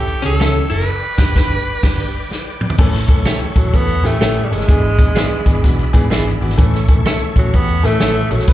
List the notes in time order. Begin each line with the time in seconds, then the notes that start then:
Already playing: E3 C#4 E4 G4 A4 C#5 E5 C#6
0.07 muted picked electric bass stroke, closed hi-hat
0.22 C#2 E3 C#4 A4, snare, closed hi-hat
0.40 E3 C#4 A4 C#5 E5, snare, closed hi-hat
0.70 F#1 E3 C#4 E4 A4 B4, closed hi-hat
0.79 snare
0.88 B4 D5 G5 D6
1.18 G1 G3 D4 G4 B4, kick, snare, crash
1.36 G1 G3 D4 G4 B4, kick, snare
1.83 G1 G3 D4 G4 B4, kick, snare, crash
2.31 snare
2.61 mid tom
2.70 floor tom
2.78 A1 E3 A3 C#4 A4 C#5 E5 C#6, kick, crash
2.93 snare, closed hi-hat
3.08 E3 A3 C#4 A4, kick, closed hi-hat
3.18 B1
3.25 E3 A3 C#4 G4 A4 C#5 E5, snare, closed hi-hat
3.42 muted picked electric bass stroke
3.56 A1 E3 F#3 A3 C#4 A4, kick, closed hi-hat
3.73 E2 E3 A3 B3 C#4 A4, kick, closed hi-hat
3.88 closed hi-hat
4.04 A2 E3 A3 C#4 G4, snare, closed hi-hat
4.20 A1 E3 A3 C#4 G4 A4 C#5 E5, snare, closed hi-hat
4.44 G3
4.51 G1 E3 G#3 A3 C#4 A4, closed hi-hat
4.60 snare
4.68 G#1 E3 B3 D4 G#4 D5 B5, kick, closed hi-hat
4.98 E3 B3 D4 G#4, kick, closed hi-hat
5.07 A1
5.15 E3 B3 D4 G#4 B4 D5 E5, snare, closed hi-hat
5.31 muted picked electric bass stroke
5.46 G#1 E3 B3 D4 G#4, kick, closed hi-hat
5.63 B1 E3 B3 D4 F#4, kick, closed hi-hat
5.79 closed hi-hat
5.93 G#2 E3 B3 D4 G#4, kick, closed hi-hat
6.10 G#1 E3 B3 D4 G#4 D5 E5, snare, closed hi-hat
6.41 G#1 E3 B3 D4 F#4, open hi-hat
6.49 snare
6.58 A1 E3 A3 C#4 A4 C#5 C#6, kick, closed hi-hat
6.74 snare, closed hi-hat
6.88 E3 A3 C#4 A4, kick, closed hi-hat
6.98 B1
7.06 E3 A3 C#4 A4 C#5 E5, snare, closed hi-hat
7.22 muted picked electric bass stroke
7.36 A1 E3 F#3 A3 C#4 A4, kick, closed hi-hat
7.53 E2 E3 A3 B3 C#4 G4, kick, closed hi-hat
7.69 closed hi-hat
7.83 A2 E3 A3 C#4 A4, snare, closed hi-hat
8.00 A1 E3 A3 C#4 A4 C#5 E5, snare, closed hi-hat
8.30 A#1 E3 F#3 A3 C#4 A4, closed hi-hat
8.39 snare
8.47 B1 F#3 B3 D4 B4 D5 F#5 D6, kick, closed hi-hat